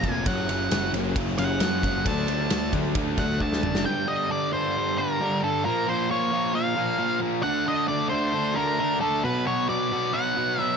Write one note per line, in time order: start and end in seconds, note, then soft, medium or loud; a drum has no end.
0.00 0.25 F1 loud
0.00 0.12 A#5 loud
0.00 kick medium
0.00 ride medium
0.05 0.26 A#2 medium
0.05 0.26 F3 medium
0.05 0.27 A#3 medium
0.05 muted steel-string acoustic guitar stroke soft
0.12 0.29 G#5 loud
0.26 0.48 F#1 loud
0.26 0.48 F#2 medium
0.26 0.48 C#3 loud
0.26 0.50 F#3 loud
0.26 0.49 A#3 medium
0.26 0.49 C#4 loud
0.26 0.91 F#5 medium
0.26 kick loud
0.26 ride loud
0.49 0.70 F#1 medium
0.49 0.70 F#2 medium
0.49 0.72 C#3 medium
0.49 0.73 F#3 medium
0.49 muted steel-string acoustic guitar stroke medium
0.49 ride medium
0.71 0.93 F#1 medium
0.71 0.93 F#2 medium
0.71 0.94 C#3 medium
0.71 0.95 F#3 loud
0.71 snare loud
0.71 ride loud
0.93 1.15 F#1 medium
0.93 1.15 F#2 loud
0.93 1.16 C#3 loud
0.93 1.16 F#3 loud
0.93 1.16 A#3 medium
0.93 1.16 C#4 medium
0.93 ride medium
1.16 1.38 F#1 medium
1.16 1.38 F#2 medium
1.16 1.39 C#3 medium
1.16 1.39 F#3 medium
1.16 kick loud
1.16 ride medium
1.38 1.60 F#1 loud
1.38 1.59 F#2 loud
1.38 1.60 C#3 loud
1.38 1.61 F#3 loud
1.38 1.61 A#3 medium
1.38 1.61 C#4 medium
1.38 2.09 F#5 medium
1.38 ride medium
1.60 1.82 F#2 medium
1.60 1.83 C#3 medium
1.60 1.84 F#3 medium
1.60 snare loud
1.60 ride medium
1.83 2.05 F#1 medium
1.83 2.05 F#2 medium
1.83 2.06 C#3 medium
1.83 2.06 F#3 loud
1.83 muted steel-string acoustic guitar stroke medium
1.83 kick medium
1.83 ride medium
2.06 2.27 D2 loud
2.06 2.27 D3 medium
2.06 2.29 F#3 medium
2.06 2.28 A3 loud
2.06 2.28 D4 loud
2.06 2.70 A5 loud
2.06 kick loud
2.06 ride loud
2.28 2.50 D2 medium
2.28 2.50 D3 medium
2.28 2.50 A3 medium
2.28 2.51 D4 loud
2.28 muted steel-string acoustic guitar stroke soft
2.28 ride medium
2.50 2.72 D2 medium
2.50 2.73 D3 loud
2.50 2.74 A3 loud
2.50 2.74 D4 loud
2.50 muted steel-string acoustic guitar stroke soft
2.50 snare loud
2.50 ride medium
2.73 2.94 D2 medium
2.73 2.95 D3 loud
2.73 2.96 F#3 medium
2.73 2.96 A3 loud
2.73 2.96 D4 loud
2.73 kick medium
2.73 ride medium
2.95 3.17 D2 loud
2.95 3.18 D3 medium
2.95 3.18 A3 medium
2.95 3.19 D4 medium
2.95 muted steel-string acoustic guitar stroke medium
2.95 kick loud
2.95 ride medium
3.18 3.39 D2 loud
3.18 3.41 D3 loud
3.18 3.41 F#3 medium
3.18 3.42 A3 loud
3.18 3.42 D4 loud
3.18 3.42 F#5 medium
3.18 kick medium
3.18 ride medium
3.40 3.62 D2 medium
3.40 3.62 D3 medium
3.40 3.63 A3 medium
3.40 3.64 D4 loud
3.40 3.83 A5 loud
3.40 muted steel-string acoustic guitar stroke medium
3.40 kick medium
3.53 snare medium
3.63 3.85 F#1 medium
3.63 3.85 D3 medium
3.63 3.85 A3 medium
3.63 3.86 D4 loud
3.63 muted steel-string acoustic guitar stroke medium
3.63 mid tom medium
3.75 snare medium
3.85 4.07 G2 medium
3.85 4.08 D3 loud
3.85 4.08 G3 loud
3.85 4.07 G5 loud
4.08 4.29 G2 medium
4.08 4.30 D3 medium
4.08 4.30 G3 medium
4.08 4.29 D#5 medium
4.30 4.52 G2 loud
4.30 4.52 D3 loud
4.30 4.53 G3 loud
4.30 4.52 D5 loud
4.53 4.75 G2 medium
4.53 4.76 D3 loud
4.53 4.77 G3 medium
4.53 4.99 C5 loud
4.77 4.97 G2 medium
4.77 4.98 D3 loud
4.77 4.99 G3 loud
4.98 5.19 G2 medium
4.98 5.20 D3 medium
4.98 5.21 G3 loud
4.98 5.40 A#4 loud
5.21 5.42 G2 loud
5.21 5.42 D3 loud
5.21 5.43 G3 loud
5.43 5.64 G2 medium
5.43 5.64 D3 medium
5.43 5.65 G3 medium
5.43 5.64 A4 medium
5.65 5.87 A#2 loud
5.65 5.87 F3 loud
5.65 5.88 A#3 loud
5.65 5.86 A#4 loud
5.88 6.09 A#2 medium
5.88 6.10 F3 medium
5.88 6.10 A#3 medium
5.88 6.11 C5 medium
6.10 6.31 A#2 loud
6.10 6.31 F3 loud
6.10 6.32 A#3 loud
6.10 6.52 C#5 medium
6.32 6.53 A#2 medium
6.32 6.54 F3 medium
6.32 6.55 A#3 loud
6.54 6.75 A#2 loud
6.54 6.76 F3 loud
6.54 6.76 A#3 loud
6.54 7.18 F5 medium
6.76 6.97 A#2 loud
6.76 6.98 F3 loud
6.76 6.98 A#3 medium
6.99 7.19 A#2 loud
6.99 7.21 F3 medium
6.99 7.21 A#3 loud
7.21 7.42 A#2 medium
7.21 7.43 F3 medium
7.21 7.43 A#3 medium
7.43 7.65 D3 medium
7.43 7.66 A3 loud
7.43 7.67 D4 loud
7.43 7.67 F#5 loud
7.66 7.87 D3 medium
7.66 7.88 A3 medium
7.66 7.89 D4 medium
7.66 7.88 D#5 loud
7.88 8.09 D3 loud
7.88 8.10 A3 loud
7.88 8.11 D4 loud
7.88 8.09 D5 loud
8.10 8.33 D3 medium
8.10 8.33 A3 loud
8.10 8.34 D4 loud
8.10 8.57 C5 loud
8.34 8.55 D3 medium
8.34 8.56 A3 loud
8.34 8.57 D4 loud
8.55 8.78 D3 medium
8.55 8.79 A3 medium
8.55 8.80 D4 medium
8.55 9.00 A#4 loud
8.79 9.01 D3 loud
8.79 9.01 A3 loud
8.79 9.02 D4 loud
9.01 9.23 D3 medium
9.01 9.23 A3 medium
9.01 9.25 D4 medium
9.01 9.24 A4 medium
9.24 9.46 B2 loud
9.24 9.46 F#3 loud
9.24 9.47 B3 loud
9.24 9.46 B4 loud
9.47 9.67 B2 medium
9.47 9.68 F#3 loud
9.47 9.68 B3 loud
9.47 9.67 C#5 medium
9.68 9.91 B2 medium
9.68 9.92 F#3 loud
9.68 9.92 B3 loud
9.68 10.15 D5 medium
9.92 10.13 B2 medium
9.92 10.13 F#3 loud
9.92 10.13 B3 loud
10.13 10.35 B2 loud
10.13 10.36 F#3 loud
10.13 10.36 B3 loud
10.13 10.60 F#5 medium
10.37 10.57 B2 medium
10.37 10.58 F#3 medium
10.37 10.58 B3 loud
10.58 10.77 B2 medium
10.58 10.77 F#3 loud
10.58 10.77 B3 loud
10.58 10.76 E5 medium